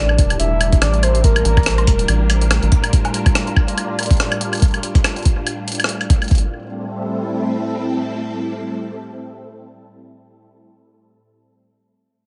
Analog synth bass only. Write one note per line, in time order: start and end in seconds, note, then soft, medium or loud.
0.00 0.20 A1 loud
0.19 0.36 E1 medium
0.40 0.79 E1 medium
0.82 1.43 A1 medium
1.45 1.89 A1 loud
1.88 2.05 E1 medium
2.09 2.59 A1 medium
2.63 2.70 A1 loud